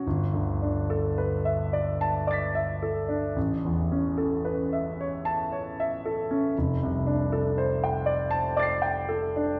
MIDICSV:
0, 0, Header, 1, 2, 480
1, 0, Start_track
1, 0, Tempo, 1127820
1, 22, Time_signature, 3, 2, 24, 8
1, 502, Tempo, 1086957
1, 1942, Tempo, 1054482
1, 2902, Tempo, 1030928
1, 4321, End_track
2, 0, Start_track
2, 0, Title_t, "Grand piano"
2, 0, Program_c, 0, 0
2, 0, Control_c, 0, 64, 127
2, 28, Note_on_c, 0, 31, 44
2, 29, Control_c, 0, 64, 0
2, 92, Control_c, 0, 64, 127
2, 142, Note_on_c, 0, 38, 34
2, 264, Note_on_c, 0, 62, 37
2, 335, Note_off_c, 0, 38, 0
2, 383, Note_on_c, 0, 69, 39
2, 455, Note_off_c, 0, 62, 0
2, 501, Note_on_c, 0, 71, 38
2, 575, Note_off_c, 0, 69, 0
2, 622, Note_on_c, 0, 76, 39
2, 695, Note_off_c, 0, 71, 0
2, 745, Note_on_c, 0, 74, 39
2, 815, Note_off_c, 0, 76, 0
2, 869, Note_on_c, 0, 81, 51
2, 936, Note_off_c, 0, 74, 0
2, 985, Note_on_c, 0, 74, 40
2, 985, Note_on_c, 0, 86, 30
2, 1000, Note_on_c, 0, 93, 31
2, 1010, Note_on_c, 0, 95, 30
2, 1058, Note_off_c, 0, 81, 0
2, 1107, Note_on_c, 0, 76, 40
2, 1176, Note_off_c, 0, 74, 0
2, 1229, Note_on_c, 0, 69, 37
2, 1298, Note_off_c, 0, 76, 0
2, 1343, Note_on_c, 0, 62, 40
2, 1420, Note_off_c, 0, 69, 0
2, 1449, Note_off_c, 0, 86, 0
2, 1451, Note_off_c, 0, 31, 0
2, 1456, Note_off_c, 0, 93, 0
2, 1461, Note_off_c, 0, 95, 0
2, 1465, Note_off_c, 0, 62, 0
2, 1465, Note_on_c, 0, 33, 42
2, 1471, Control_c, 0, 64, 0
2, 1533, Control_c, 0, 64, 127
2, 1592, Note_on_c, 0, 40, 35
2, 1711, Note_on_c, 0, 61, 38
2, 1780, Note_off_c, 0, 40, 0
2, 1825, Note_on_c, 0, 69, 36
2, 1898, Note_off_c, 0, 61, 0
2, 1945, Note_on_c, 0, 71, 40
2, 2015, Note_off_c, 0, 69, 0
2, 2072, Note_on_c, 0, 76, 38
2, 2137, Note_off_c, 0, 71, 0
2, 2199, Note_on_c, 0, 73, 40
2, 2261, Note_off_c, 0, 76, 0
2, 2311, Note_on_c, 0, 81, 53
2, 2385, Note_off_c, 0, 73, 0
2, 2435, Note_on_c, 0, 73, 41
2, 2502, Note_off_c, 0, 81, 0
2, 2560, Note_on_c, 0, 76, 44
2, 2622, Note_off_c, 0, 73, 0
2, 2677, Note_on_c, 0, 69, 37
2, 2744, Note_off_c, 0, 76, 0
2, 2792, Note_on_c, 0, 61, 42
2, 2861, Note_off_c, 0, 69, 0
2, 2884, Note_off_c, 0, 33, 0
2, 2906, Note_off_c, 0, 61, 0
2, 2907, Control_c, 0, 64, 0
2, 2915, Note_on_c, 0, 29, 46
2, 2981, Control_c, 0, 64, 127
2, 3032, Note_on_c, 0, 36, 40
2, 3143, Note_on_c, 0, 62, 40
2, 3218, Note_off_c, 0, 36, 0
2, 3263, Note_on_c, 0, 69, 40
2, 3333, Note_off_c, 0, 62, 0
2, 3381, Note_on_c, 0, 72, 44
2, 3451, Note_off_c, 0, 69, 0
2, 3501, Note_on_c, 0, 79, 45
2, 3569, Note_off_c, 0, 72, 0
2, 3605, Note_on_c, 0, 74, 45
2, 3688, Note_off_c, 0, 79, 0
2, 3720, Note_on_c, 0, 81, 57
2, 3800, Note_off_c, 0, 74, 0
2, 3841, Note_on_c, 0, 74, 50
2, 3843, Note_on_c, 0, 86, 37
2, 3854, Note_on_c, 0, 93, 36
2, 3869, Note_on_c, 0, 96, 37
2, 3918, Note_off_c, 0, 81, 0
2, 3958, Note_on_c, 0, 79, 50
2, 4040, Note_off_c, 0, 74, 0
2, 4083, Note_on_c, 0, 69, 43
2, 4161, Note_off_c, 0, 79, 0
2, 4211, Note_on_c, 0, 62, 50
2, 4287, Note_off_c, 0, 69, 0
2, 4318, Note_off_c, 0, 86, 0
2, 4321, Note_off_c, 0, 29, 0
2, 4321, Note_off_c, 0, 62, 0
2, 4321, Note_off_c, 0, 93, 0
2, 4321, Note_off_c, 0, 96, 0
2, 4321, End_track
0, 0, End_of_file